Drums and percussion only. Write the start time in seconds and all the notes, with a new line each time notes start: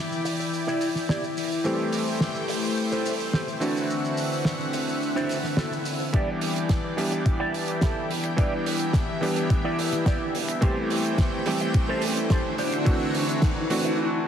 0.12 shaker
0.25 open hi-hat, shaker
0.40 shaker
0.54 shaker
0.69 shaker
0.81 open hi-hat, shaker
0.95 snare, shaker
1.09 snare, shaker
1.24 shaker
1.37 open hi-hat, shaker
1.52 shaker
1.65 shaker
1.92 open hi-hat, shaker
2.07 shaker
2.20 snare, shaker
2.35 shaker
2.48 open hi-hat, shaker
2.64 shaker
2.77 shaker
2.92 shaker
3.05 open hi-hat, shaker
3.20 shaker
3.33 snare, shaker
3.48 shaker
3.61 open hi-hat, shaker
3.77 shaker
3.90 shaker
4.05 shaker
4.17 open hi-hat, shaker
4.32 shaker
4.45 snare, shaker
4.60 shaker
4.73 open hi-hat, shaker
4.89 shaker
5.03 shaker
5.17 shaker
5.29 open hi-hat, shaker
5.44 snare, shaker
5.57 snare, shaker
5.73 shaker
5.85 open hi-hat, shaker
6.00 shaker
6.14 kick, closed hi-hat
6.41 open hi-hat
6.56 closed hi-hat
6.69 kick, snare, closed hi-hat
6.98 open hi-hat
7.12 closed hi-hat
7.26 kick, closed hi-hat
7.54 open hi-hat
7.68 closed hi-hat
7.81 kick, snare, closed hi-hat
8.11 open hi-hat
8.24 finger snap, closed hi-hat
8.38 kick, closed hi-hat
8.66 open hi-hat
8.79 closed hi-hat
8.93 kick, snare, closed hi-hat
9.23 open hi-hat
9.36 closed hi-hat
9.50 kick, closed hi-hat
9.79 open hi-hat
9.92 snare, closed hi-hat
10.06 kick, snare, closed hi-hat
10.35 open hi-hat
10.48 finger snap, closed hi-hat
10.62 kick, closed hi-hat
10.90 open hi-hat
11.05 closed hi-hat
11.18 kick, snare, closed hi-hat
11.46 open hi-hat
11.60 closed hi-hat
11.74 kick, closed hi-hat
12.02 open hi-hat
12.17 closed hi-hat
12.30 kick, snare, closed hi-hat
12.58 open hi-hat
12.72 finger snap, closed hi-hat
12.86 kick, closed hi-hat
13.14 open hi-hat
13.29 closed hi-hat
13.42 kick, snare, closed hi-hat
13.70 open hi-hat
13.85 closed hi-hat